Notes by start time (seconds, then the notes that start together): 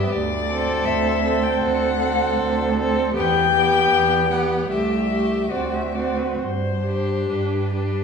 Already playing: G4 E5
0.10 D2 D5
0.50 C4 A4
0.85 E5
0.89 D2
1.24 C4 A4
1.43 G5
1.62 D2 F#5
2.00 C4 A4
2.40 D2
2.79 C4 A4
3.14 E2 B3 G4 G5
3.52 B3 G4
3.92 E2
4.30 B3 G4 F#5
4.70 C2 A3 G4 E5
5.10 A3 G4
5.51 D2 C4 F#4 D5
5.74 E5
5.94 C4 F#4 D5
6.18 B4
6.41 G2 C5
6.84 D4 G4
7.30 G2 B4
7.76 D4 G4